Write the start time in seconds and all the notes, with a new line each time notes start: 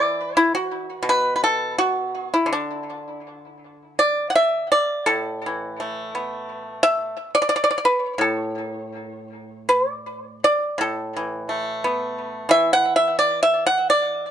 Already playing: E3 D5
0.37 E4
0.55 F#4
1.03 B2
1.09 B4
1.36 B4
1.44 A4
1.78 F#4
2.34 E4
2.46 D3
2.53 D4
3.99 D5
4.30 F#5
4.35 E5
4.72 D5
5.06 A2 A4
5.46 E3
5.80 A3
6.15 B3
6.83 E5
7.35 D5
7.42 D5
7.49 D5
7.56 D5
7.64 D5
7.71 D5
7.78 D5
7.85 B4
8.18 A2 A4
9.69 B4
9.91 D5
10.44 D5
10.78 A2 A4
11.17 E3
11.49 A3
11.58 G4
11.70 F#4
11.84 B3
12.49 E3 E5
12.73 F#5
12.96 E5
13.19 D5
13.43 E5
13.67 F#5
13.90 D5